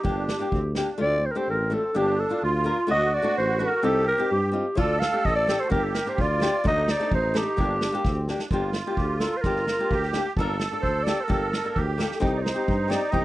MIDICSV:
0, 0, Header, 1, 6, 480
1, 0, Start_track
1, 0, Key_signature, -2, "minor"
1, 0, Tempo, 472069
1, 43, Time_signature, 2, 2, 24, 8
1, 6283, Tempo, 463679
1, 13601, End_track
2, 0, Start_track
2, 0, Title_t, "Clarinet"
2, 0, Program_c, 0, 71
2, 0, Note_on_c, 0, 67, 73
2, 785, Note_off_c, 0, 67, 0
2, 1025, Note_on_c, 0, 74, 106
2, 1277, Note_on_c, 0, 72, 78
2, 1293, Note_off_c, 0, 74, 0
2, 1334, Note_on_c, 0, 70, 61
2, 1349, Note_off_c, 0, 72, 0
2, 1398, Note_on_c, 0, 72, 85
2, 1414, Note_off_c, 0, 70, 0
2, 1508, Note_off_c, 0, 72, 0
2, 1529, Note_on_c, 0, 70, 80
2, 1774, Note_on_c, 0, 69, 82
2, 1789, Note_off_c, 0, 70, 0
2, 2002, Note_on_c, 0, 67, 90
2, 2018, Note_off_c, 0, 69, 0
2, 2236, Note_on_c, 0, 69, 77
2, 2252, Note_off_c, 0, 67, 0
2, 2481, Note_on_c, 0, 65, 77
2, 2496, Note_off_c, 0, 69, 0
2, 2951, Note_off_c, 0, 65, 0
2, 2959, Note_on_c, 0, 75, 105
2, 3198, Note_on_c, 0, 74, 95
2, 3214, Note_off_c, 0, 75, 0
2, 3426, Note_off_c, 0, 74, 0
2, 3432, Note_on_c, 0, 72, 92
2, 3659, Note_on_c, 0, 70, 90
2, 3674, Note_off_c, 0, 72, 0
2, 3904, Note_on_c, 0, 69, 104
2, 3920, Note_off_c, 0, 70, 0
2, 4141, Note_off_c, 0, 69, 0
2, 4146, Note_on_c, 0, 70, 98
2, 4365, Note_off_c, 0, 70, 0
2, 4390, Note_on_c, 0, 67, 83
2, 4860, Note_on_c, 0, 74, 103
2, 4875, Note_off_c, 0, 67, 0
2, 5080, Note_on_c, 0, 77, 89
2, 5095, Note_off_c, 0, 74, 0
2, 5343, Note_on_c, 0, 75, 92
2, 5359, Note_off_c, 0, 77, 0
2, 5440, Note_off_c, 0, 75, 0
2, 5447, Note_on_c, 0, 74, 98
2, 5692, Note_on_c, 0, 72, 93
2, 5708, Note_off_c, 0, 74, 0
2, 5801, Note_off_c, 0, 72, 0
2, 5808, Note_on_c, 0, 70, 92
2, 5932, Note_on_c, 0, 69, 81
2, 5947, Note_off_c, 0, 70, 0
2, 6048, Note_on_c, 0, 70, 82
2, 6063, Note_off_c, 0, 69, 0
2, 6192, Note_on_c, 0, 72, 84
2, 6207, Note_off_c, 0, 70, 0
2, 6317, Note_on_c, 0, 74, 95
2, 6332, Note_off_c, 0, 72, 0
2, 6783, Note_off_c, 0, 74, 0
2, 6797, Note_on_c, 0, 75, 115
2, 7041, Note_on_c, 0, 74, 100
2, 7057, Note_off_c, 0, 75, 0
2, 7266, Note_off_c, 0, 74, 0
2, 7282, Note_on_c, 0, 72, 85
2, 7520, Note_on_c, 0, 67, 88
2, 7535, Note_off_c, 0, 72, 0
2, 8470, Note_off_c, 0, 67, 0
2, 9170, Note_on_c, 0, 67, 75
2, 9406, Note_on_c, 0, 69, 87
2, 9421, Note_off_c, 0, 67, 0
2, 9586, Note_on_c, 0, 72, 68
2, 9602, Note_off_c, 0, 69, 0
2, 9631, Note_on_c, 0, 70, 104
2, 9647, Note_off_c, 0, 72, 0
2, 10366, Note_off_c, 0, 70, 0
2, 11088, Note_on_c, 0, 72, 86
2, 11306, Note_on_c, 0, 74, 95
2, 11322, Note_off_c, 0, 72, 0
2, 11485, Note_on_c, 0, 72, 59
2, 11501, Note_off_c, 0, 74, 0
2, 11523, Note_on_c, 0, 70, 79
2, 11539, Note_off_c, 0, 72, 0
2, 12268, Note_off_c, 0, 70, 0
2, 12691, Note_on_c, 0, 74, 53
2, 12748, Note_on_c, 0, 72, 80
2, 12763, Note_off_c, 0, 74, 0
2, 13247, Note_on_c, 0, 74, 85
2, 13263, Note_off_c, 0, 72, 0
2, 13459, Note_on_c, 0, 75, 100
2, 13474, Note_off_c, 0, 74, 0
2, 13601, Note_off_c, 0, 75, 0
2, 13601, End_track
3, 0, Start_track
3, 0, Title_t, "Accordion"
3, 0, Program_c, 1, 21
3, 39, Note_on_c, 1, 62, 82
3, 492, Note_off_c, 1, 62, 0
3, 538, Note_on_c, 1, 60, 84
3, 645, Note_off_c, 1, 60, 0
3, 783, Note_on_c, 1, 62, 58
3, 1002, Note_off_c, 1, 62, 0
3, 1016, Note_on_c, 1, 60, 73
3, 1940, Note_off_c, 1, 60, 0
3, 1963, Note_on_c, 1, 62, 94
3, 2467, Note_off_c, 1, 62, 0
3, 2468, Note_on_c, 1, 65, 104
3, 2944, Note_on_c, 1, 66, 106
3, 2959, Note_off_c, 1, 65, 0
3, 3895, Note_on_c, 1, 67, 87
3, 3930, Note_off_c, 1, 66, 0
3, 4573, Note_off_c, 1, 67, 0
3, 4865, Note_on_c, 1, 69, 105
3, 5759, Note_on_c, 1, 66, 76
3, 5768, Note_off_c, 1, 69, 0
3, 5818, Note_off_c, 1, 66, 0
3, 5821, Note_on_c, 1, 67, 92
3, 6289, Note_on_c, 1, 65, 101
3, 6304, Note_off_c, 1, 67, 0
3, 6775, Note_on_c, 1, 63, 89
3, 6783, Note_off_c, 1, 65, 0
3, 7736, Note_on_c, 1, 62, 78
3, 7765, Note_off_c, 1, 63, 0
3, 8183, Note_off_c, 1, 62, 0
3, 8219, Note_on_c, 1, 60, 86
3, 8453, Note_on_c, 1, 62, 59
3, 8465, Note_off_c, 1, 60, 0
3, 8678, Note_off_c, 1, 62, 0
3, 8687, Note_on_c, 1, 65, 79
3, 10135, Note_on_c, 1, 67, 113
3, 10179, Note_off_c, 1, 65, 0
3, 10584, Note_off_c, 1, 67, 0
3, 10616, Note_on_c, 1, 69, 104
3, 12053, Note_on_c, 1, 67, 94
3, 12098, Note_off_c, 1, 69, 0
3, 12498, Note_off_c, 1, 67, 0
3, 12538, Note_on_c, 1, 63, 84
3, 13601, Note_off_c, 1, 63, 0
3, 13601, End_track
4, 0, Start_track
4, 0, Title_t, "Nylon-string guitar"
4, 0, Program_c, 2, 24
4, 34, Note_on_c, 2, 58, 78
4, 43, Note_on_c, 2, 62, 68
4, 48, Note_on_c, 2, 67, 84
4, 221, Note_off_c, 2, 58, 0
4, 225, Note_off_c, 2, 62, 0
4, 227, Note_off_c, 2, 67, 0
4, 402, Note_on_c, 2, 58, 64
4, 412, Note_on_c, 2, 62, 61
4, 421, Note_on_c, 2, 67, 66
4, 586, Note_off_c, 2, 58, 0
4, 591, Note_off_c, 2, 62, 0
4, 596, Note_off_c, 2, 67, 0
4, 766, Note_on_c, 2, 58, 68
4, 772, Note_on_c, 2, 62, 75
4, 784, Note_on_c, 2, 67, 78
4, 889, Note_off_c, 2, 58, 0
4, 892, Note_off_c, 2, 62, 0
4, 899, Note_off_c, 2, 67, 0
4, 993, Note_on_c, 2, 57, 83
4, 998, Note_on_c, 2, 62, 65
4, 1000, Note_on_c, 2, 65, 80
4, 1184, Note_off_c, 2, 57, 0
4, 1185, Note_off_c, 2, 62, 0
4, 1188, Note_off_c, 2, 65, 0
4, 1374, Note_on_c, 2, 57, 61
4, 1379, Note_on_c, 2, 62, 64
4, 1386, Note_on_c, 2, 67, 73
4, 1556, Note_off_c, 2, 57, 0
4, 1558, Note_off_c, 2, 62, 0
4, 1562, Note_off_c, 2, 67, 0
4, 1728, Note_on_c, 2, 57, 69
4, 1738, Note_on_c, 2, 62, 67
4, 1747, Note_on_c, 2, 65, 71
4, 1853, Note_off_c, 2, 57, 0
4, 1858, Note_off_c, 2, 62, 0
4, 1863, Note_off_c, 2, 65, 0
4, 1977, Note_on_c, 2, 58, 78
4, 1982, Note_on_c, 2, 62, 76
4, 1993, Note_on_c, 2, 67, 86
4, 2159, Note_off_c, 2, 58, 0
4, 2161, Note_off_c, 2, 62, 0
4, 2167, Note_off_c, 2, 67, 0
4, 2332, Note_on_c, 2, 58, 59
4, 2342, Note_on_c, 2, 62, 68
4, 2349, Note_on_c, 2, 65, 65
4, 2516, Note_off_c, 2, 58, 0
4, 2521, Note_off_c, 2, 62, 0
4, 2525, Note_off_c, 2, 65, 0
4, 2685, Note_on_c, 2, 58, 75
4, 2692, Note_on_c, 2, 62, 71
4, 2701, Note_on_c, 2, 70, 74
4, 2813, Note_off_c, 2, 58, 0
4, 2817, Note_off_c, 2, 62, 0
4, 2821, Note_off_c, 2, 70, 0
4, 2917, Note_on_c, 2, 57, 87
4, 2927, Note_on_c, 2, 62, 74
4, 2931, Note_on_c, 2, 66, 88
4, 3109, Note_off_c, 2, 57, 0
4, 3114, Note_off_c, 2, 62, 0
4, 3114, Note_off_c, 2, 66, 0
4, 3277, Note_on_c, 2, 57, 70
4, 3286, Note_on_c, 2, 62, 63
4, 3298, Note_on_c, 2, 66, 84
4, 3469, Note_off_c, 2, 57, 0
4, 3473, Note_off_c, 2, 62, 0
4, 3479, Note_off_c, 2, 66, 0
4, 3652, Note_on_c, 2, 57, 64
4, 3661, Note_on_c, 2, 62, 65
4, 3666, Note_on_c, 2, 66, 77
4, 3776, Note_off_c, 2, 57, 0
4, 3780, Note_off_c, 2, 62, 0
4, 3782, Note_off_c, 2, 66, 0
4, 3890, Note_on_c, 2, 60, 85
4, 3895, Note_on_c, 2, 63, 71
4, 3906, Note_on_c, 2, 67, 88
4, 4074, Note_off_c, 2, 60, 0
4, 4077, Note_off_c, 2, 63, 0
4, 4082, Note_off_c, 2, 67, 0
4, 4248, Note_on_c, 2, 60, 65
4, 4260, Note_on_c, 2, 63, 54
4, 4266, Note_on_c, 2, 67, 78
4, 4432, Note_off_c, 2, 60, 0
4, 4439, Note_off_c, 2, 63, 0
4, 4440, Note_off_c, 2, 67, 0
4, 4592, Note_on_c, 2, 60, 69
4, 4605, Note_on_c, 2, 63, 63
4, 4610, Note_on_c, 2, 65, 71
4, 4723, Note_off_c, 2, 60, 0
4, 4730, Note_off_c, 2, 63, 0
4, 4732, Note_off_c, 2, 65, 0
4, 4833, Note_on_c, 2, 57, 79
4, 4845, Note_on_c, 2, 62, 71
4, 4852, Note_on_c, 2, 65, 96
4, 5022, Note_off_c, 2, 57, 0
4, 5029, Note_off_c, 2, 62, 0
4, 5032, Note_off_c, 2, 65, 0
4, 5208, Note_on_c, 2, 57, 67
4, 5216, Note_on_c, 2, 62, 52
4, 5224, Note_on_c, 2, 67, 64
4, 5389, Note_off_c, 2, 57, 0
4, 5393, Note_off_c, 2, 62, 0
4, 5395, Note_off_c, 2, 67, 0
4, 5564, Note_on_c, 2, 57, 67
4, 5571, Note_on_c, 2, 62, 64
4, 5580, Note_on_c, 2, 67, 80
4, 5685, Note_off_c, 2, 57, 0
4, 5689, Note_off_c, 2, 62, 0
4, 5694, Note_off_c, 2, 67, 0
4, 5794, Note_on_c, 2, 58, 85
4, 5800, Note_on_c, 2, 62, 74
4, 5812, Note_on_c, 2, 67, 89
4, 5979, Note_off_c, 2, 58, 0
4, 5982, Note_off_c, 2, 62, 0
4, 5988, Note_off_c, 2, 67, 0
4, 6156, Note_on_c, 2, 58, 68
4, 6167, Note_on_c, 2, 62, 62
4, 6175, Note_on_c, 2, 70, 73
4, 6339, Note_off_c, 2, 58, 0
4, 6345, Note_off_c, 2, 62, 0
4, 6349, Note_off_c, 2, 70, 0
4, 6511, Note_on_c, 2, 58, 64
4, 6523, Note_on_c, 2, 62, 62
4, 6534, Note_on_c, 2, 67, 81
4, 6639, Note_off_c, 2, 58, 0
4, 6645, Note_off_c, 2, 62, 0
4, 6650, Note_off_c, 2, 67, 0
4, 6757, Note_on_c, 2, 57, 86
4, 6761, Note_on_c, 2, 62, 76
4, 6776, Note_on_c, 2, 66, 91
4, 6943, Note_off_c, 2, 62, 0
4, 6944, Note_off_c, 2, 57, 0
4, 6952, Note_off_c, 2, 66, 0
4, 7126, Note_on_c, 2, 57, 67
4, 7134, Note_on_c, 2, 62, 59
4, 7139, Note_on_c, 2, 69, 81
4, 7308, Note_off_c, 2, 57, 0
4, 7313, Note_off_c, 2, 62, 0
4, 7314, Note_off_c, 2, 69, 0
4, 7483, Note_on_c, 2, 57, 75
4, 7487, Note_on_c, 2, 62, 62
4, 7496, Note_on_c, 2, 69, 74
4, 7607, Note_off_c, 2, 57, 0
4, 7609, Note_off_c, 2, 62, 0
4, 7614, Note_off_c, 2, 69, 0
4, 7721, Note_on_c, 2, 58, 84
4, 7730, Note_on_c, 2, 62, 71
4, 7740, Note_on_c, 2, 67, 77
4, 7907, Note_off_c, 2, 58, 0
4, 7912, Note_off_c, 2, 62, 0
4, 7917, Note_off_c, 2, 67, 0
4, 8087, Note_on_c, 2, 58, 80
4, 8103, Note_on_c, 2, 62, 71
4, 8112, Note_on_c, 2, 67, 90
4, 8271, Note_off_c, 2, 58, 0
4, 8279, Note_off_c, 2, 62, 0
4, 8284, Note_off_c, 2, 67, 0
4, 8465, Note_on_c, 2, 58, 68
4, 8472, Note_on_c, 2, 62, 72
4, 8483, Note_on_c, 2, 67, 81
4, 8581, Note_off_c, 2, 58, 0
4, 8584, Note_off_c, 2, 62, 0
4, 8590, Note_off_c, 2, 67, 0
4, 8705, Note_on_c, 2, 58, 84
4, 8713, Note_on_c, 2, 62, 81
4, 8722, Note_on_c, 2, 67, 89
4, 8882, Note_off_c, 2, 58, 0
4, 8886, Note_off_c, 2, 62, 0
4, 8890, Note_off_c, 2, 67, 0
4, 9060, Note_on_c, 2, 58, 62
4, 9066, Note_on_c, 2, 62, 53
4, 9071, Note_on_c, 2, 67, 67
4, 9240, Note_off_c, 2, 58, 0
4, 9243, Note_off_c, 2, 62, 0
4, 9244, Note_off_c, 2, 67, 0
4, 9420, Note_on_c, 2, 58, 58
4, 9425, Note_on_c, 2, 62, 57
4, 9434, Note_on_c, 2, 70, 65
4, 9540, Note_off_c, 2, 58, 0
4, 9543, Note_off_c, 2, 62, 0
4, 9547, Note_off_c, 2, 70, 0
4, 9662, Note_on_c, 2, 58, 81
4, 9667, Note_on_c, 2, 62, 75
4, 9679, Note_on_c, 2, 67, 85
4, 9841, Note_off_c, 2, 58, 0
4, 9844, Note_off_c, 2, 62, 0
4, 9850, Note_off_c, 2, 67, 0
4, 10020, Note_on_c, 2, 58, 65
4, 10035, Note_on_c, 2, 62, 57
4, 10036, Note_on_c, 2, 67, 67
4, 10201, Note_off_c, 2, 58, 0
4, 10208, Note_off_c, 2, 62, 0
4, 10208, Note_off_c, 2, 67, 0
4, 10378, Note_on_c, 2, 58, 77
4, 10394, Note_on_c, 2, 62, 70
4, 10402, Note_on_c, 2, 67, 94
4, 10499, Note_off_c, 2, 58, 0
4, 10507, Note_off_c, 2, 62, 0
4, 10511, Note_off_c, 2, 67, 0
4, 10636, Note_on_c, 2, 58, 94
4, 10641, Note_on_c, 2, 62, 82
4, 10654, Note_on_c, 2, 70, 100
4, 10808, Note_off_c, 2, 58, 0
4, 10811, Note_off_c, 2, 62, 0
4, 10817, Note_off_c, 2, 70, 0
4, 10977, Note_on_c, 2, 58, 59
4, 10986, Note_on_c, 2, 62, 60
4, 10997, Note_on_c, 2, 69, 64
4, 11159, Note_off_c, 2, 58, 0
4, 11161, Note_off_c, 2, 62, 0
4, 11168, Note_off_c, 2, 69, 0
4, 11338, Note_on_c, 2, 58, 65
4, 11344, Note_on_c, 2, 62, 51
4, 11352, Note_on_c, 2, 67, 68
4, 11459, Note_off_c, 2, 58, 0
4, 11462, Note_off_c, 2, 62, 0
4, 11465, Note_off_c, 2, 67, 0
4, 11563, Note_on_c, 2, 58, 80
4, 11574, Note_on_c, 2, 62, 69
4, 11579, Note_on_c, 2, 67, 88
4, 11750, Note_off_c, 2, 58, 0
4, 11755, Note_off_c, 2, 62, 0
4, 11758, Note_off_c, 2, 67, 0
4, 11933, Note_on_c, 2, 58, 63
4, 11941, Note_on_c, 2, 62, 52
4, 11954, Note_on_c, 2, 70, 68
4, 12114, Note_off_c, 2, 58, 0
4, 12118, Note_off_c, 2, 62, 0
4, 12125, Note_off_c, 2, 70, 0
4, 12288, Note_on_c, 2, 58, 75
4, 12297, Note_on_c, 2, 62, 72
4, 12307, Note_on_c, 2, 69, 85
4, 12411, Note_off_c, 2, 58, 0
4, 12416, Note_off_c, 2, 62, 0
4, 12421, Note_off_c, 2, 69, 0
4, 12516, Note_on_c, 2, 60, 87
4, 12522, Note_on_c, 2, 63, 80
4, 12530, Note_on_c, 2, 67, 91
4, 12703, Note_off_c, 2, 60, 0
4, 12707, Note_off_c, 2, 63, 0
4, 12710, Note_off_c, 2, 67, 0
4, 12871, Note_on_c, 2, 60, 66
4, 12872, Note_on_c, 2, 63, 60
4, 12886, Note_on_c, 2, 67, 70
4, 13059, Note_off_c, 2, 63, 0
4, 13060, Note_off_c, 2, 60, 0
4, 13067, Note_off_c, 2, 67, 0
4, 13219, Note_on_c, 2, 60, 63
4, 13226, Note_on_c, 2, 63, 57
4, 13239, Note_on_c, 2, 67, 83
4, 13352, Note_off_c, 2, 60, 0
4, 13355, Note_off_c, 2, 63, 0
4, 13362, Note_off_c, 2, 67, 0
4, 13469, Note_on_c, 2, 60, 80
4, 13474, Note_on_c, 2, 63, 63
4, 13489, Note_on_c, 2, 67, 84
4, 13601, Note_off_c, 2, 60, 0
4, 13601, Note_off_c, 2, 63, 0
4, 13601, Note_off_c, 2, 67, 0
4, 13601, End_track
5, 0, Start_track
5, 0, Title_t, "Tuba"
5, 0, Program_c, 3, 58
5, 46, Note_on_c, 3, 31, 78
5, 336, Note_off_c, 3, 31, 0
5, 532, Note_on_c, 3, 38, 86
5, 822, Note_off_c, 3, 38, 0
5, 1020, Note_on_c, 3, 38, 81
5, 1308, Note_off_c, 3, 38, 0
5, 1502, Note_on_c, 3, 33, 82
5, 1790, Note_off_c, 3, 33, 0
5, 1984, Note_on_c, 3, 31, 89
5, 2271, Note_off_c, 3, 31, 0
5, 2467, Note_on_c, 3, 38, 94
5, 2753, Note_off_c, 3, 38, 0
5, 2951, Note_on_c, 3, 38, 79
5, 3236, Note_off_c, 3, 38, 0
5, 3435, Note_on_c, 3, 33, 86
5, 3718, Note_off_c, 3, 33, 0
5, 3901, Note_on_c, 3, 36, 90
5, 4187, Note_off_c, 3, 36, 0
5, 4385, Note_on_c, 3, 43, 80
5, 4669, Note_off_c, 3, 43, 0
5, 4859, Note_on_c, 3, 38, 79
5, 5144, Note_off_c, 3, 38, 0
5, 5341, Note_on_c, 3, 33, 79
5, 5624, Note_off_c, 3, 33, 0
5, 5810, Note_on_c, 3, 31, 87
5, 6094, Note_off_c, 3, 31, 0
5, 6288, Note_on_c, 3, 38, 94
5, 6577, Note_off_c, 3, 38, 0
5, 6773, Note_on_c, 3, 38, 90
5, 7061, Note_off_c, 3, 38, 0
5, 7259, Note_on_c, 3, 33, 88
5, 7545, Note_off_c, 3, 33, 0
5, 7743, Note_on_c, 3, 31, 79
5, 8029, Note_off_c, 3, 31, 0
5, 8218, Note_on_c, 3, 38, 86
5, 8506, Note_off_c, 3, 38, 0
5, 8700, Note_on_c, 3, 31, 80
5, 8988, Note_off_c, 3, 31, 0
5, 9174, Note_on_c, 3, 38, 84
5, 9464, Note_off_c, 3, 38, 0
5, 9656, Note_on_c, 3, 31, 77
5, 9945, Note_off_c, 3, 31, 0
5, 10145, Note_on_c, 3, 38, 75
5, 10432, Note_off_c, 3, 38, 0
5, 10618, Note_on_c, 3, 31, 93
5, 10906, Note_off_c, 3, 31, 0
5, 11101, Note_on_c, 3, 38, 78
5, 11388, Note_off_c, 3, 38, 0
5, 11586, Note_on_c, 3, 31, 76
5, 11870, Note_off_c, 3, 31, 0
5, 12062, Note_on_c, 3, 38, 87
5, 12346, Note_off_c, 3, 38, 0
5, 12540, Note_on_c, 3, 36, 83
5, 12824, Note_off_c, 3, 36, 0
5, 13012, Note_on_c, 3, 43, 86
5, 13296, Note_off_c, 3, 43, 0
5, 13490, Note_on_c, 3, 36, 87
5, 13601, Note_off_c, 3, 36, 0
5, 13601, End_track
6, 0, Start_track
6, 0, Title_t, "Drums"
6, 47, Note_on_c, 9, 36, 83
6, 149, Note_off_c, 9, 36, 0
6, 292, Note_on_c, 9, 38, 88
6, 393, Note_off_c, 9, 38, 0
6, 529, Note_on_c, 9, 36, 69
6, 631, Note_off_c, 9, 36, 0
6, 763, Note_on_c, 9, 38, 73
6, 864, Note_off_c, 9, 38, 0
6, 4858, Note_on_c, 9, 36, 80
6, 4960, Note_off_c, 9, 36, 0
6, 5101, Note_on_c, 9, 38, 90
6, 5203, Note_off_c, 9, 38, 0
6, 5338, Note_on_c, 9, 36, 69
6, 5440, Note_off_c, 9, 36, 0
6, 5577, Note_on_c, 9, 38, 81
6, 5679, Note_off_c, 9, 38, 0
6, 5812, Note_on_c, 9, 36, 87
6, 5914, Note_off_c, 9, 36, 0
6, 6044, Note_on_c, 9, 38, 82
6, 6146, Note_off_c, 9, 38, 0
6, 6286, Note_on_c, 9, 36, 78
6, 6390, Note_off_c, 9, 36, 0
6, 6527, Note_on_c, 9, 38, 83
6, 6631, Note_off_c, 9, 38, 0
6, 6770, Note_on_c, 9, 36, 95
6, 6874, Note_off_c, 9, 36, 0
6, 7010, Note_on_c, 9, 38, 91
6, 7113, Note_off_c, 9, 38, 0
6, 7131, Note_on_c, 9, 38, 26
6, 7235, Note_off_c, 9, 38, 0
6, 7252, Note_on_c, 9, 36, 79
6, 7355, Note_off_c, 9, 36, 0
6, 7493, Note_on_c, 9, 38, 80
6, 7596, Note_off_c, 9, 38, 0
6, 7736, Note_on_c, 9, 36, 78
6, 7839, Note_off_c, 9, 36, 0
6, 7973, Note_on_c, 9, 38, 75
6, 8077, Note_off_c, 9, 38, 0
6, 8213, Note_on_c, 9, 38, 28
6, 8215, Note_on_c, 9, 36, 79
6, 8316, Note_off_c, 9, 38, 0
6, 8319, Note_off_c, 9, 36, 0
6, 8458, Note_on_c, 9, 38, 53
6, 8561, Note_off_c, 9, 38, 0
6, 8574, Note_on_c, 9, 38, 66
6, 8678, Note_off_c, 9, 38, 0
6, 8693, Note_on_c, 9, 36, 82
6, 8797, Note_off_c, 9, 36, 0
6, 8925, Note_on_c, 9, 38, 78
6, 9028, Note_off_c, 9, 38, 0
6, 9173, Note_on_c, 9, 36, 70
6, 9276, Note_off_c, 9, 36, 0
6, 9411, Note_on_c, 9, 38, 78
6, 9515, Note_off_c, 9, 38, 0
6, 9652, Note_on_c, 9, 38, 29
6, 9658, Note_on_c, 9, 36, 90
6, 9756, Note_off_c, 9, 38, 0
6, 9761, Note_off_c, 9, 36, 0
6, 9781, Note_on_c, 9, 38, 26
6, 9884, Note_off_c, 9, 38, 0
6, 9900, Note_on_c, 9, 38, 78
6, 10003, Note_off_c, 9, 38, 0
6, 10141, Note_on_c, 9, 36, 73
6, 10244, Note_off_c, 9, 36, 0
6, 10264, Note_on_c, 9, 38, 24
6, 10367, Note_off_c, 9, 38, 0
6, 10374, Note_on_c, 9, 38, 78
6, 10478, Note_off_c, 9, 38, 0
6, 10617, Note_on_c, 9, 36, 78
6, 10721, Note_off_c, 9, 36, 0
6, 10855, Note_on_c, 9, 38, 77
6, 10959, Note_off_c, 9, 38, 0
6, 11100, Note_on_c, 9, 36, 60
6, 11203, Note_off_c, 9, 36, 0
6, 11343, Note_on_c, 9, 38, 83
6, 11447, Note_off_c, 9, 38, 0
6, 11582, Note_on_c, 9, 36, 86
6, 11685, Note_off_c, 9, 36, 0
6, 11824, Note_on_c, 9, 38, 78
6, 11927, Note_off_c, 9, 38, 0
6, 12061, Note_on_c, 9, 36, 62
6, 12164, Note_off_c, 9, 36, 0
6, 12303, Note_on_c, 9, 38, 76
6, 12406, Note_off_c, 9, 38, 0
6, 12428, Note_on_c, 9, 38, 51
6, 12532, Note_off_c, 9, 38, 0
6, 12541, Note_on_c, 9, 36, 82
6, 12644, Note_off_c, 9, 36, 0
6, 12785, Note_on_c, 9, 38, 78
6, 12888, Note_off_c, 9, 38, 0
6, 13014, Note_on_c, 9, 36, 67
6, 13118, Note_off_c, 9, 36, 0
6, 13251, Note_on_c, 9, 38, 81
6, 13354, Note_off_c, 9, 38, 0
6, 13483, Note_on_c, 9, 36, 78
6, 13587, Note_off_c, 9, 36, 0
6, 13601, End_track
0, 0, End_of_file